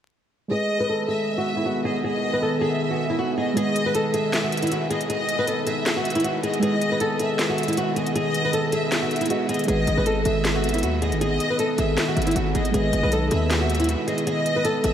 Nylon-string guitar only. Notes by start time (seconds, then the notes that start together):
0.51 G#4
0.80 B4
0.89 A4
1.08 G#4
1.38 F#4
1.57 E4
1.66 F#4
1.85 G#4
2.04 G#4
2.33 B4
2.42 A4
2.61 G#4
2.91 F#4
3.10 E4
3.19 F#4
3.38 G#4
3.57 G#4
3.86 B4
3.95 A4
4.14 G#4
4.43 F#4
4.63 E4
4.72 F#4
4.90 G#4
5.10 G#4
5.39 B4
5.48 A4
5.67 G#4
5.97 F#4
6.15 E4
6.24 F#4
6.44 G#4
6.63 G#4
6.92 B4
7.01 A4
7.20 G#4
7.49 F#4
7.68 E4
7.77 F#4
7.96 G#4
8.16 G#4
8.45 B4
8.54 A4
8.73 G#4
9.02 F#4
9.21 E4
9.30 F#4
9.49 G#4
9.68 G#4
9.98 B4
10.07 A4
10.26 G#4
10.55 F#4
10.74 E4
10.83 F#4
11.02 G#4
11.21 G#4
11.50 B4
11.59 A4
11.79 G#4
12.08 F#4
12.27 E4
12.36 F#4
12.55 G#4
12.74 G#4
13.03 B4
13.12 A4
13.32 G#4
13.61 F#4
13.80 E4
13.89 F#4
14.08 G#4
14.27 G#4
14.56 B4
14.65 A4
14.84 G#4